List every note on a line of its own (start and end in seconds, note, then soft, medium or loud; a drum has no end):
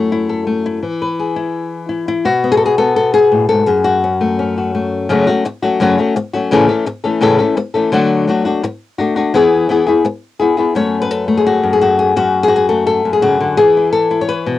0.00 0.82 F#2 medium
0.00 0.45 A3 medium
0.00 0.12 E4 medium
0.00 0.28 A4 soft
0.00 0.82 C#5 medium
0.12 0.64 E4 medium
0.29 0.80 A4 medium
0.47 0.80 A3 medium
0.66 0.81 E4 medium
0.82 2.25 E3 medium
1.02 2.24 B4 soft
1.19 2.23 G#4 soft
1.36 1.88 E4 medium
1.89 2.07 E4 medium
2.08 2.25 E4 medium
2.25 3.67 B2 medium
2.25 2.88 F#4 medium
2.44 2.77 B3 soft
2.52 2.57 G#4 medium
2.57 2.65 A4 medium
2.66 2.78 G#4 medium
2.78 3.65 B3 medium
2.78 2.95 A4 medium
2.96 3.13 A4 medium
3.14 3.48 G#4 medium
3.32 3.49 A2 medium
3.49 3.67 G#2 medium
3.49 3.66 A4 medium
3.66 5.08 F#2 medium
3.66 4.02 G#4 medium
3.84 4.56 F#4 medium
4.04 4.38 C#4 soft
4.21 4.73 A3 medium
4.39 5.10 C#4 soft
4.58 5.10 F#4 soft
4.75 5.08 A3 soft
5.09 5.26 F#2 medium
5.09 5.27 C#3 medium
5.09 5.27 F#3 medium
5.09 5.27 A3 medium
5.09 5.27 C#4 medium
5.09 5.26 F#4 medium
5.27 5.44 F#3 soft
5.27 5.45 A3 soft
5.27 5.44 C#4 soft
5.27 5.44 F#4 medium
5.45 muted nylon-string guitar stroke medium
5.62 5.80 F#3 soft
5.62 5.80 A3 soft
5.62 5.80 C#4 soft
5.62 5.80 F#4 medium
5.80 5.97 F#2 medium
5.80 5.97 C#3 medium
5.80 5.98 F#3 medium
5.80 5.98 A3 medium
5.80 5.98 C#4 medium
5.80 5.97 F#4 medium
5.98 6.15 F#3 soft
5.98 6.16 A3 medium
5.98 6.15 C#4 medium
5.98 6.15 F#4 soft
6.16 muted nylon-string guitar stroke medium
6.34 6.51 F#3 soft
6.34 6.51 A3 soft
6.34 6.51 C#4 soft
6.34 6.50 F#4 medium
6.51 6.68 A2 medium
6.51 6.68 C#3 medium
6.51 6.69 E3 medium
6.51 6.69 A3 medium
6.51 6.68 C#4 medium
6.51 6.68 A4 loud
6.69 6.86 E3 soft
6.69 6.86 A3 soft
6.69 6.86 C#4 soft
6.69 6.86 A4 medium
6.86 muted nylon-string guitar stroke medium
7.04 7.21 E3 soft
7.04 7.21 A3 medium
7.04 7.21 C#4 medium
7.04 7.21 A4 medium
7.21 7.38 A2 medium
7.21 7.39 C#3 medium
7.21 7.39 E3 medium
7.21 7.39 A3 medium
7.21 7.38 C#4 medium
7.21 7.37 A4 medium
7.39 7.56 E3 soft
7.39 7.56 A3 medium
7.39 7.56 C#4 medium
7.39 7.56 A4 medium
7.57 muted nylon-string guitar stroke medium
7.74 7.92 E3 soft
7.74 7.92 A3 medium
7.74 7.92 C#4 medium
7.74 7.91 A4 soft
7.92 8.27 D3 medium
7.92 8.26 F#3 medium
7.92 8.27 A3 medium
7.92 8.28 D4 medium
7.92 8.28 F#4 medium
8.27 8.45 F#3 soft
8.27 8.45 A3 medium
8.27 8.45 D4 medium
8.27 8.44 F#4 medium
8.45 8.63 A3 soft
8.45 8.63 D4 soft
8.45 8.62 F#4 medium
8.63 muted nylon-string guitar stroke medium
8.98 9.16 A3 medium
8.98 9.16 D4 medium
8.98 9.15 F#4 medium
9.16 9.34 A3 soft
9.16 9.34 D4 medium
9.16 9.33 F#4 medium
9.34 9.68 E3 medium
9.34 9.69 B3 medium
9.34 9.69 E4 medium
9.34 9.69 G#4 medium
9.69 9.86 E3 medium
9.69 9.87 B3 soft
9.69 9.87 E4 medium
9.69 9.85 G#4 medium
9.87 10.04 B3 soft
9.87 10.04 E4 medium
9.87 10.04 G#4 medium
10.05 muted nylon-string guitar stroke medium
10.39 10.58 B3 soft
10.39 10.57 E4 soft
10.39 10.56 G#4 medium
10.57 10.75 B3 soft
10.57 10.75 E4 soft
10.57 10.74 G#4 soft
10.75 11.62 F#2 medium
10.75 11.27 A3 medium
10.75 11.11 C#4 soft
10.75 11.01 C#5 medium
11.02 11.46 B4 medium
11.11 11.37 A4 medium
11.28 12.14 A3 medium
11.37 11.72 G#4 medium
11.46 11.80 F#4 medium
11.63 12.15 F#2 medium
11.73 11.98 G#4 medium
11.81 12.15 F#4 medium
11.99 12.42 G#4 medium
12.16 13.04 F#2 medium
12.16 12.47 F#4 medium
12.43 12.55 G#4 medium
12.48 12.91 F#4 medium
12.56 12.69 G#4 medium
12.69 13.56 A3 medium
12.69 12.85 A4 medium
12.87 13.13 A4 medium
13.05 13.58 F#2 medium
13.13 13.56 G#4 medium
13.22 13.40 C#3 medium
13.22 13.58 F#4 medium
13.41 13.58 D3 medium
13.57 14.59 E3 medium
13.57 13.92 G#4 loud
13.77 14.10 E4 soft
13.93 14.21 A4 medium
14.11 14.59 E4 medium
14.21 14.59 C#5 medium
14.29 14.59 B4 medium
14.46 14.59 B2 medium